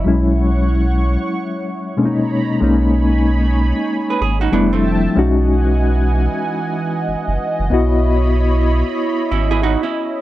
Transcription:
X:1
M:4/4
L:1/16
Q:"Swing 16ths" 1/4=94
K:B
V:1 name="Analog synth pad"
[Ecfc']12 [Dcab]4 | [Dcgb]12 [=F,e=g=a]4 | [E,dfg]16 | [Ecb]16 |]
V:2 name="Hollow-body jazz guitar"
z16 | z8 z [GB] G [DF] [B,=D] [=A,=C]3 | z16 | z8 z2 [CE] [EG] [DF] [CE]3 |]
V:3 name="Reed electric piano"
[F,G,CE]12 [B,,G,A,C=D^D]4 | [G,A,CD]12 [=G,=A,=DE]4 | [G,CDF]16 | [B,EFd]16 |]
V:4 name="Sub bass" clef=bass
B,,,6- B,,, z8 z | B,,,6- B,,, z3 G,,,2 =F,,,4 | B,,,6- B,,, z4 z F,,, F,,, z F,,, | B,,,6- B,,, z3 G,,,3 z3 |]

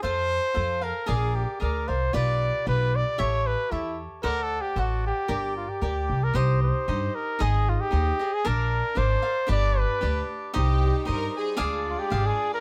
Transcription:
X:1
M:2/4
L:1/16
Q:1/4=114
K:Gm
V:1 name="Cavaquinho"
[FAcf]4 [FAcf]2 [Acf]2 | [_ABdf]4 [ABdf]2 [Bdf]2 | [FG=Bd]4 [FGBd]4 | [GA^c=e]4 [GAce]4 |
[Acd^f]4 [Acdf]4 | [GBdg]4 [GBdg]4 | [K:Cm] [EGce]4 [EGce]4 | [EAce]4 [EAce]2 [Ace]2 |
[DBdf]4 [DBdf]2 [Bdf]2 | [DG=Bd]4 [DGBd]4 | [EGce]4 [EGce]4 | [DAdf]4 [DAdf]4 |]
V:2 name="Trumpet"
c6 B2 | _A2 G2 B2 c2 | d4 =B2 d2 | ^c2 =B2 =E2 z2 |
(3B2 A2 G2 ^F2 G2- | G2 F G4 B | [K:Cm] c2 c4 B2 | A2 F G4 A |
B4 c4 | d2 =B4 z2 | z8 | z2 F G2 A2 B |]
V:3 name="Violin section"
z8 | z8 | z8 | z8 |
z8 | z8 | [K:Cm] z8 | z8 |
z8 | z8 | G4 B2 A2- | A z6 z |]
V:4 name="Violin section"
z8 | z8 | z8 | z8 |
z8 | z8 | [K:Cm] z8 | z8 |
z8 | z8 | [G,Ec]8 | [A,Fd]8 |]
V:5 name="Upright bass" clef=bass
F,,4 F,,4 | B,,,4 D,,2 C,,2 | =B,,,4 B,,,4 | A,,,4 =E,,4 |
D,,4 A,,,4 | G,,,4 D,,2 C,,2 | [K:Cm] C,,4 G,,2 z2 | A,,,4 E,,2 z2 |
B,,,4 A,,,2 z2 | G,,,4 D,,2 z2 | C,,4 G,,2 z2 | D,,4 A,,,2 z2 |]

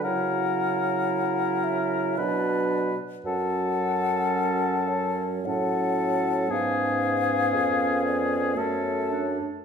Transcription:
X:1
M:3/4
L:1/16
Q:1/4=56
K:F#phr
V:1 name="Flute"
f6 e2 d3 z | f6 c2 f4 | ^e6 d2 c3 z |]
V:2 name="Oboe"
^A8 B3 z | A8 A4 | ^G8 A3 z |]
V:3 name="Clarinet"
E8 D3 z | C8 C4 | C8 C2 D2 |]
V:4 name="French horn" clef=bass
F,8 F,3 z | F,8 F,4 | B,8 A,3 z |]
V:5 name="Bassoon" clef=bass
C,8 B,,3 z | F,,8 A,,4 | ^G,,4 ^E,,4 F,,3 z |]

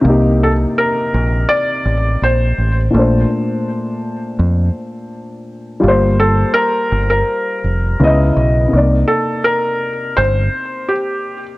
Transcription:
X:1
M:4/4
L:1/16
Q:"Swing 16ths" 1/4=83
K:Cdor
V:1 name="Felt piano"
z2 A2 B4 d4 c3 z | z16 | z2 A2 B3 B6- B z2 | z2 A2 B4 c4 G3 z |]
V:2 name="Upright piano"
[C,B,EG]16 | [B,,A,Dc]16 | [G,B,FGc]12 [_D,_C_Fe]4 | [C,B,Ed]16 |]
V:3 name="Fingered electric bass" clef=bass
C,,4 z2 B,,,2 z2 A,,,2 B,,,2 A,,,2 | B,,,2 z6 F,,2 z6 | G,,,4 z2 G,,,2 z2 F,,,2 _D,,2 _C,,2 | C,,2 z6 G,,,2 z6 |]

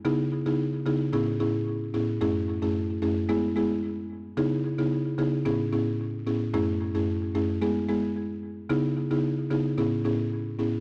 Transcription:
X:1
M:4/4
L:1/16
Q:1/4=111
K:C#m
V:1 name="Marimba"
[C,B,DEG]3 [C,B,DEG]3 [C,B,DEG]2 [A,,B,CEG]2 [A,,B,CEG] z3 [A,,B,CEG] z | [F,,A,CEG]3 [F,,A,CEG]3 [F,,A,CEG]2 [G,B,EG]2 [G,B,EG] z4 z | [C,B,DEG]3 [C,B,DEG]3 [C,B,DEG]2 [A,,B,CEG]2 [A,,B,CEG] z3 [A,,B,CEG] z | [F,,A,CEG]3 [F,,A,CEG]3 [F,,A,CEG]2 [G,B,EG]2 [G,B,EG] z4 z |
[C,B,DEG]3 [C,B,DEG]3 [C,B,DEG]2 [A,,B,CEG]2 [A,,B,CEG] z3 [A,,B,CEG] z |]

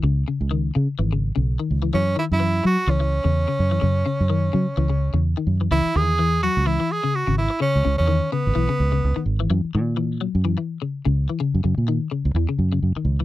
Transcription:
X:1
M:4/4
L:1/16
Q:"Swing 16ths" 1/4=127
K:C#dor
V:1 name="Tenor saxophone"
z16 | C2 E E3 F2 C8- | C12 z4 | E2 G4 F2 E2 G2 F2 E2 |
C3 C3 B,8 z2 | z16 | z16 |]
V:2 name="Clean electric guitar" clef=bass
C,2 C,2 D,2 C,2 E, C,2 C,2 D,2 E, | E,2 D,2 E,2 F,2 E, E,2 C,2 C,2 E, | C,2 C,2 D,2 C,2 E, C,2 C,2 D,2 E, | E,2 D,2 E,2 F,2 E, E,2 C,2 C,2 z |
C,2 C,2 D,2 C,2 E, C,2 C,2 D,2 E, | E,2 D,2 E,2 F,2 E, E,2 C,2 C,2 E, | C,2 C,2 D,2 C,2 E, C,2 C,2 D,2 E, |]
V:3 name="Fingered electric bass" clef=bass
C,,2 z C,,3 C, z G,,,3 B,,,2 z C,,2 | F,,2 z F,,3 F, z C,,3 E,,2 z F,,2 | F,,2 z F,,3 F, z C,,3 E,,2 z F,,2 | C,, z E,,4- E,, C,,2 z4 G,,,2 z |
z C,, C,, E,,2 z2 G,,, B,,, z C,,2 C,, z G,,,2 | F,, z A,,4- A,, F,,2 z4 C,,2 z | z F,, F,, A,,2 z2 C,, E,, z F,,2 F,, z C,,2 |]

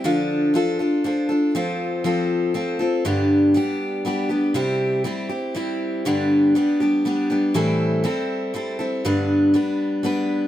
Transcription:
X:1
M:3/4
L:1/8
Q:1/4=120
K:Gmix
V:1 name="Steel-string acoustic guitar"
[D,F,DFA]2 [F,DFA] [DFA] [F,DFA] [DFA] | [F,CFA]2 [F,CFA]2 [F,CFA] [CFA] | [G,,D,G,B,DG]2 [G,B,DG]2 [G,B,DG] [G,B,DG] | [C,G,CEG]2 [G,CEG] [CEG] [G,CEG]2 |
[G,,D,G,B,DG]2 [G,B,DG] [G,B,DG] [G,B,DG] [G,B,DG] | [A,,E,G,CEA]2 [G,CEA]2 [G,CEA] [G,CEA] | [G,,D,G,B,DB]2 [G,B,DB]2 [G,B,DB]2 |]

